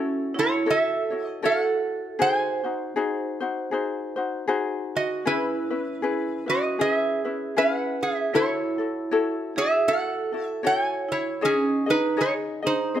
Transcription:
0.00 0.32 C#4 medium
0.00 0.35 E4 medium
0.00 0.34 F#4 medium
0.00 0.35 A4 medium
0.00 0.40 A4 medium
0.00 0.33 C#5 medium
0.34 0.64 E4 medium
0.34 0.65 E4 soft
0.34 0.66 F#4 medium
0.34 0.66 C#5 medium
0.39 0.67 E4 medium
0.39 0.70 C#5 loud
0.66 1.12 E4 medium
0.66 1.11 F#4 medium
0.66 1.12 A4 medium
0.66 1.39 A4 medium
0.66 1.09 C#5 medium
0.70 1.42 A4 medium
0.70 1.24 E5 loud
1.10 1.42 E4 soft
1.10 1.42 F#4 soft
1.10 1.43 C#5 soft
1.24 1.48 D#5 loud
1.42 2.19 E4 medium
1.42 2.19 F#4 medium
1.42 2.20 A4 medium
1.42 2.16 A4 medium
1.42 2.18 A4 medium
1.42 2.19 C#5 loud
1.42 2.21 F#5 medium
2.19 2.64 D#4 medium
2.19 2.63 F#4 medium
2.19 2.65 G#4 medium
2.19 4.46 C5 medium
2.19 2.62 C5 medium
2.19 4.47 C5 medium
2.19 4.47 G#5 loud
2.64 2.95 D#4 soft
2.64 2.95 F#4 medium
2.64 2.96 C5 soft
2.96 3.41 D#4 medium
2.96 3.41 F#4 medium
2.96 3.42 G#4 medium
2.96 3.39 C5 medium
3.40 3.71 D#4 medium
3.40 3.71 F#4 medium
3.40 3.72 C5 medium
3.71 4.17 D#4 medium
3.71 4.16 F#4 medium
3.71 4.18 G#4 medium
3.71 4.15 C5 medium
4.16 4.47 D#4 soft
4.16 4.47 F#4 soft
4.16 4.48 C5 medium
4.48 5.25 D#4 medium
4.48 5.26 F#4 medium
4.48 5.25 G#4 medium
4.48 5.26 C5 medium
4.96 5.25 F#4 medium
4.96 5.26 F#4 medium
4.96 5.29 D#5 medium
5.25 5.71 C#4 medium
5.25 5.70 E4 medium
5.25 6.45 E4 medium
5.25 5.71 G#4 medium
5.25 5.69 B4 medium
5.25 6.45 B4 medium
5.70 6.02 C#4 soft
5.70 6.02 E4 soft
5.70 6.02 B4 medium
6.02 6.48 C#4 medium
6.02 6.46 E4 medium
6.02 6.48 G#4 medium
6.02 6.45 B4 medium
6.46 6.78 C#4 soft
6.46 6.79 E4 medium
6.46 6.78 F#4 medium
6.46 6.79 F#4 medium
6.46 6.79 B4 medium
6.46 6.81 D#5 medium
6.79 7.25 C#4 medium
6.79 7.24 E4 medium
6.79 7.25 G#4 medium
6.79 7.53 G#4 medium
6.79 7.54 G#4 medium
6.79 7.23 B4 medium
6.79 6.92 D#5 loud
6.92 7.58 E5 loud
7.25 7.56 C#4 soft
7.25 7.56 E4 soft
7.25 7.57 B4 medium
7.56 8.33 C#4 medium
7.56 8.34 E4 medium
7.56 8.33 G#4 medium
7.56 7.99 B4 medium
7.56 8.00 B4 medium
7.56 8.34 B4 medium
7.56 7.76 F5 loud
7.76 8.02 F#5 loud
8.03 8.32 G#4 medium
8.03 8.33 G#4 medium
8.03 8.35 E5 medium
8.34 9.52 E4 medium
8.34 8.78 E4 medium
8.34 9.53 E4 medium
8.34 8.79 F#4 medium
8.34 8.77 A4 medium
8.34 8.79 C#5 medium
8.34 9.60 C#5 loud
8.78 9.11 E4 medium
8.78 9.11 F#4 soft
8.78 9.10 A4 medium
9.11 9.56 E4 medium
9.11 9.56 F#4 medium
9.11 9.57 A4 medium
9.11 9.56 C#5 medium
9.56 9.88 E4 medium
9.56 9.88 F#4 soft
9.56 9.86 G#4 medium
9.56 9.87 G#4 medium
9.56 9.90 E5 loud
9.88 10.32 E4 medium
9.88 10.33 F#4 medium
9.88 10.61 A4 medium
9.88 10.31 A4 medium
9.88 10.33 C#5 medium
9.88 10.46 F#5 loud
10.32 10.63 E4 soft
10.32 10.63 F#4 soft
10.32 10.64 A4 soft
10.46 10.66 E5 loud
10.63 11.41 E4 medium
10.63 11.41 F#4 medium
10.63 11.41 A4 medium
10.63 11.40 C#5 medium
10.63 11.07 C#5 medium
10.63 10.85 G5 loud
10.85 11.12 G#5 loud
11.09 11.39 E4 medium
11.09 11.40 E4 medium
11.09 11.43 C#5 medium
11.41 11.84 C#4 medium
11.41 11.85 C#4 medium
11.41 11.87 D#4 medium
11.41 11.86 G#4 medium
11.41 11.86 C#5 medium
11.41 11.85 D#5 medium
11.45 11.90 G#4 medium
11.86 12.17 D#4 soft
11.86 12.17 D#4 medium
11.86 12.18 D#4 medium
11.86 12.16 G#4 soft
11.86 12.17 D#5 soft
11.91 12.21 B4 loud
12.17 12.63 D#4 medium
12.17 12.62 G#4 medium
12.17 12.40 G#4 medium
12.17 12.32 G#4 medium
12.17 12.63 C#5 medium
12.17 12.61 D#5 medium
12.21 12.33 C#5 medium
12.62 12.95 D#4 soft
12.62 13.00 D#4 medium
12.62 12.94 G#4 soft
12.62 12.95 D#5 medium
12.67 13.00 D#4 medium
12.67 13.00 C5 medium
12.95 13.00 C4 medium
12.95 13.00 G#4 medium
12.95 13.00 C5 medium
12.95 13.00 D#5 medium

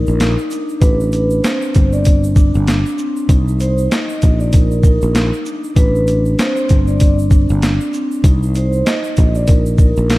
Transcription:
0.00 0.20 D#4 medium
0.00 0.35 A#4 medium
0.07 0.35 A#1 medium
0.07 shaker medium
0.20 0.82 D#4 medium
0.20 snare loud
0.20 closed hi-hat medium
0.20 shaker medium
0.38 shaker medium
0.50 0.82 D4 medium
0.50 shaker medium
0.69 shaker soft
0.81 1.40 A1 loud
0.81 1.12 D4 medium
0.81 1.39 B4 loud
0.81 kick loud
0.81 closed hi-hat medium
0.81 shaker medium
1.00 shaker medium
1.12 2.04 D4 medium
1.12 closed hi-hat medium
1.12 shaker soft
1.12 shaker medium
1.30 shaker medium
1.44 2.97 C4 medium
1.44 snare loud
1.44 closed hi-hat medium
1.44 shaker medium
1.62 shaker soft
1.74 2.51 G1 medium
1.74 kick medium
1.74 closed hi-hat medium
1.74 shaker soft
1.74 shaker medium
1.93 2.21 D5 medium
1.93 shaker soft
2.05 2.35 D4 medium
2.05 kick loud
2.05 closed hi-hat medium
2.05 shaker medium
2.24 shaker medium
2.36 2.66 D4 medium
2.36 kick loud
2.36 shaker medium
2.54 2.83 G1 medium
2.54 shaker medium
2.67 3.29 D4 medium
2.67 snare loud
2.67 closed hi-hat medium
2.67 shaker medium
2.86 shaker medium
2.98 3.29 C4 medium
2.98 shaker medium
3.17 shaker medium
3.29 3.87 C2 loud
3.29 3.59 D#4 medium
3.29 kick loud
3.29 closed hi-hat medium
3.29 shaker medium
3.48 shaker medium
3.60 3.92 D#4 medium
3.60 3.88 C5 medium
3.60 closed hi-hat medium
3.60 shaker soft
3.60 shaker medium
3.78 shaker medium
3.90 4.52 D#4 medium
3.90 4.37 D#5 medium
3.90 snare loud
3.90 closed hi-hat medium
3.90 shaker medium
4.09 shaker soft
4.22 4.99 A#1 medium
4.22 kick medium
4.22 closed hi-hat medium
4.22 shaker soft
4.22 shaker medium
4.39 4.51 D5 medium
4.39 shaker soft
4.52 4.82 D#4 medium
4.52 4.81 A#4 medium
4.52 kick loud
4.52 closed hi-hat medium
4.52 shaker medium
4.71 shaker medium
4.83 5.13 D#4 medium
4.83 5.30 A#4 medium
4.83 kick loud
4.83 shaker medium
5.02 5.30 A#1 medium
5.02 shaker soft
5.14 5.76 D#4 medium
5.14 snare loud
5.14 closed hi-hat medium
5.14 shaker medium
5.33 shaker medium
5.45 5.76 D4 medium
5.45 shaker medium
5.64 shaker medium
5.76 6.35 A1 loud
5.76 6.07 D4 medium
5.76 6.34 B4 loud
5.76 kick loud
5.76 closed hi-hat medium
5.76 shaker medium
5.95 shaker medium
6.07 6.99 D4 medium
6.07 closed hi-hat medium
6.07 shaker soft
6.07 shaker medium
6.25 shaker medium
6.39 7.92 C4 medium
6.39 6.85 C5 medium
6.39 snare loud
6.39 closed hi-hat medium
6.39 shaker medium
6.57 shaker medium
6.69 7.46 G1 medium
6.69 kick medium
6.69 closed hi-hat medium
6.69 shaker soft
6.69 shaker medium
6.87 7.15 D5 medium
6.87 shaker soft
7.00 7.30 D4 medium
7.00 kick loud
7.00 closed hi-hat medium
7.00 shaker medium
7.19 shaker medium
7.31 7.60 D4 medium
7.31 kick loud
7.31 shaker medium
7.49 7.78 G1 loud
7.49 shaker medium
7.61 8.24 D4 medium
7.61 snare loud
7.61 closed hi-hat medium
7.61 shaker medium
7.81 shaker medium
7.93 8.24 C4 medium
7.93 shaker medium
8.11 shaker medium
8.24 8.82 C2 loud
8.24 8.54 D#4 medium
8.24 kick loud
8.24 closed hi-hat medium
8.24 shaker medium
8.43 shaker medium
8.54 8.87 D#4 medium
8.54 8.84 C5 medium
8.54 closed hi-hat medium
8.54 shaker medium
8.73 shaker medium
8.86 9.48 D#4 medium
8.86 9.32 D#5 medium
8.86 snare loud
8.86 closed hi-hat medium
8.86 shaker medium
9.04 shaker soft
9.16 9.94 A#1 loud
9.16 kick medium
9.16 closed hi-hat medium
9.16 shaker soft
9.16 shaker medium
9.35 9.47 D5 medium
9.35 shaker soft
9.47 9.77 D#4 medium
9.47 9.75 A#4 medium
9.47 kick loud
9.47 closed hi-hat medium
9.47 shaker medium
9.66 shaker medium
9.78 10.08 D#4 medium
9.78 10.18 A#4 medium
9.78 kick loud
9.78 shaker medium
9.96 10.18 A#1 medium
9.96 shaker soft
10.09 10.18 D#4 loud
10.09 snare loud
10.09 closed hi-hat medium
10.09 shaker medium

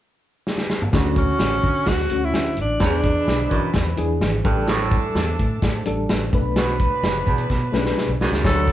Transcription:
0.47 snare medium
0.58 snare medium
0.70 snare medium
0.82 mid tom medium
0.92 1.31 D2 medium
0.92 1.26 D2 medium
0.92 2.54 D3 medium
0.92 1.43 D3 medium
0.92 2.54 C#4 medium
0.92 1.43 C#4 medium
0.92 2.54 F#4 medium
0.92 1.44 F#4 medium
0.92 kick loud
0.92 snare loud
0.92 closed hi-hat medium
1.16 1.90 C#4 loud
1.16 kick medium
1.16 closed hi-hat medium
1.39 1.59 A1 medium
1.39 snare medium
1.39 closed hi-hat medium
1.64 1.82 D3 medium
1.64 kick medium
1.64 closed hi-hat medium
1.86 2.06 D2 medium
1.86 2.26 F#4 loud
1.86 kick medium
1.86 snare loud
1.86 closed hi-hat medium
1.99 snare soft
2.09 2.29 D2 medium
2.09 2.48 D3 medium
2.09 2.48 C#4 medium
2.09 2.49 F#4 medium
2.09 closed hi-hat medium
2.25 2.59 E4 medium
2.33 2.59 D3 medium
2.33 snare medium
2.33 closed hi-hat medium
2.57 2.76 A1 medium
2.57 closed hi-hat medium
2.61 2.81 D4 medium
2.79 3.18 E2 medium
2.79 3.00 E2 medium
2.79 3.30 E3 medium
2.79 4.20 G#3 medium
2.79 3.30 D4 medium
2.79 4.20 E4 medium
2.79 3.31 G#4 medium
2.79 4.20 B4 medium
2.79 kick loud
2.79 snare loud
2.79 closed hi-hat medium
2.85 3.73 D4 medium
3.04 kick medium
3.04 closed hi-hat medium
3.28 3.47 B1 medium
3.28 snare medium
3.28 closed hi-hat medium
3.50 3.70 F#2 medium
3.50 3.70 E3 medium
3.50 kick medium
3.50 closed hi-hat medium
3.74 3.93 E2 medium
3.74 kick medium
3.74 snare loud
3.74 closed hi-hat medium
3.97 4.17 E2 medium
3.97 4.35 E3 loud
3.97 4.36 D4 medium
3.97 4.36 G#4 loud
3.97 closed hi-hat medium
4.20 4.40 G#1 medium
4.20 snare medium
4.20 closed hi-hat medium
4.44 5.01 A1 medium
4.44 4.64 G2 medium
4.44 6.06 E3 medium
4.44 5.20 G3 medium
4.44 5.20 D4 medium
4.44 6.06 D4 medium
4.44 6.06 A4 medium
4.44 5.21 A4 medium
4.44 kick loud
4.44 closed hi-hat medium
4.68 5.02 A2 medium
4.68 snare loud
4.68 closed hi-hat medium
4.91 kick medium
4.91 closed hi-hat medium
5.15 5.34 E2 medium
5.15 snare medium
5.15 closed hi-hat medium
5.39 5.58 A2 loud
5.39 kick medium
5.39 closed hi-hat medium
5.62 5.81 A2 medium
5.62 kick medium
5.62 snare medium
5.62 closed hi-hat medium
5.86 6.05 A1 medium
5.86 6.23 G3 medium
5.86 6.23 D4 medium
5.86 6.24 A4 medium
5.86 closed hi-hat medium
6.09 6.29 A1 medium
6.09 snare loud
6.09 closed hi-hat medium
6.33 6.89 B1 loud
6.33 8.17 F#3 medium
6.33 7.08 A3 medium
6.33 7.08 D4 medium
6.33 8.17 D4 medium
6.33 8.17 B4 medium
6.33 7.09 B4 medium
6.33 kick medium
6.33 closed hi-hat medium
6.56 6.75 B2 medium
6.56 snare loud
6.56 closed hi-hat medium
6.80 kick medium
6.80 closed hi-hat medium
7.03 7.22 F#1 medium
7.03 snare medium
7.03 closed hi-hat medium
7.27 7.46 E2 medium
7.27 7.46 B2 loud
7.27 kick medium
7.27 closed hi-hat medium
7.38 closed hi-hat soft
7.50 7.69 B2 medium
7.50 kick medium
7.50 snare soft
7.73 7.92 B1 medium
7.73 8.11 A3 medium
7.73 7.79 C#4 medium
7.73 8.11 B4 medium
7.73 snare medium
7.79 8.14 D4 medium
7.86 snare medium
7.98 snare medium
8.08 8.18 B1 medium
8.20 8.29 B1 medium
8.20 8.40 F#2 medium
8.20 snare medium
8.32 8.41 C#2 medium
8.32 snare medium
8.44 8.72 D2 medium
8.44 8.72 F#3 medium
8.44 8.72 A3 medium
8.44 8.72 D4 medium
8.44 8.72 A4 medium
8.44 8.72 C#5 medium
8.44 8.72 F#5 medium
8.44 kick loud
8.44 snare loud
8.44 closed hi-hat medium
8.68 kick medium
8.68 closed hi-hat medium

